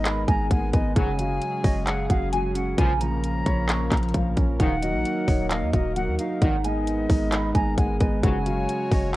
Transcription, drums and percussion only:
0.05 clap, closed hi-hat
0.28 kick, closed hi-hat
0.51 kick, closed hi-hat
0.73 kick, closed hi-hat
0.96 kick, closed hi-hat
1.19 closed hi-hat
1.42 closed hi-hat
1.64 kick, open hi-hat
1.87 clap, closed hi-hat
2.10 kick, closed hi-hat
2.33 closed hi-hat
2.55 closed hi-hat
2.78 kick, closed hi-hat
3.01 closed hi-hat
3.23 closed hi-hat
3.46 kick, closed hi-hat
3.69 clap, closed hi-hat
3.92 kick, clap, closed hi-hat
3.97 closed hi-hat
4.03 closed hi-hat
4.09 closed hi-hat
4.14 kick, closed hi-hat
4.37 kick, closed hi-hat
4.60 kick, closed hi-hat
4.82 closed hi-hat
5.05 closed hi-hat
5.28 kick, open hi-hat
5.51 clap, closed hi-hat
5.73 kick, closed hi-hat
5.96 closed hi-hat
6.19 closed hi-hat
6.42 kick, closed hi-hat
6.64 closed hi-hat
6.87 closed hi-hat
7.10 kick, open hi-hat
7.32 clap, closed hi-hat
7.55 kick, closed hi-hat
7.78 kick, closed hi-hat
8.01 kick, closed hi-hat
8.23 kick, closed hi-hat
8.46 closed hi-hat
8.69 closed hi-hat
8.91 kick, open hi-hat

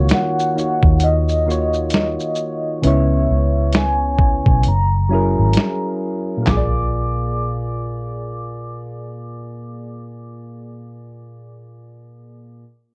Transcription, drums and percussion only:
0.09 snare, closed hi-hat, shaker
0.39 shaker
0.58 shaker
0.83 kick
1.00 closed hi-hat, shaker
1.29 shaker
1.51 shaker
1.74 shaker
1.90 snare, closed hi-hat, shaker
2.20 shaker
2.36 shaker
2.84 closed hi-hat
3.72 snare, closed hi-hat
4.18 kick
4.46 kick
4.63 closed hi-hat
5.53 snare, closed hi-hat
6.47 snare, clap, floor tom

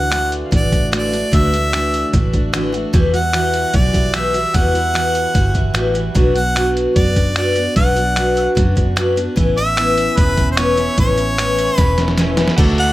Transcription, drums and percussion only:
0.12 finger snap, closed hi-hat
0.32 closed hi-hat
0.52 kick, closed hi-hat
0.72 kick, closed hi-hat
0.93 finger snap, closed hi-hat
1.13 closed hi-hat
1.33 kick, closed hi-hat
1.54 closed hi-hat
1.73 finger snap, closed hi-hat
1.94 closed hi-hat
2.13 kick, closed hi-hat
2.34 kick, closed hi-hat
2.54 finger snap, closed hi-hat
2.74 closed hi-hat
2.94 kick, closed hi-hat
3.14 closed hi-hat
3.33 finger snap, closed hi-hat
3.54 closed hi-hat
3.74 kick, closed hi-hat
3.94 kick, closed hi-hat
4.14 finger snap, closed hi-hat
4.34 closed hi-hat
4.54 kick, closed hi-hat
4.75 closed hi-hat
4.95 finger snap, closed hi-hat
5.15 closed hi-hat
5.35 kick, closed hi-hat
5.55 kick, closed hi-hat
5.75 finger snap, closed hi-hat
5.95 closed hi-hat
6.15 kick, closed hi-hat
6.36 closed hi-hat
6.56 finger snap, closed hi-hat
6.77 closed hi-hat
6.96 kick, closed hi-hat
7.16 kick, closed hi-hat
7.36 finger snap, closed hi-hat
7.56 closed hi-hat
7.76 kick, closed hi-hat
7.97 closed hi-hat
8.16 finger snap, closed hi-hat
8.37 closed hi-hat
8.57 kick, closed hi-hat
8.77 kick, closed hi-hat
8.97 finger snap, closed hi-hat
9.17 closed hi-hat
9.37 kick, closed hi-hat
9.58 closed hi-hat
9.77 finger snap, closed hi-hat
9.98 closed hi-hat
10.17 kick, closed hi-hat
10.37 kick, closed hi-hat
10.57 finger snap, closed hi-hat
10.77 closed hi-hat
10.98 kick, closed hi-hat
11.18 closed hi-hat
11.38 finger snap, closed hi-hat
11.59 closed hi-hat
11.78 kick, snare, closed hi-hat
11.98 snare, closed hi-hat
12.08 snare
12.18 snare, closed hi-hat
12.37 snare, closed hi-hat
12.48 snare
12.58 kick, closed hi-hat, crash
12.78 closed hi-hat

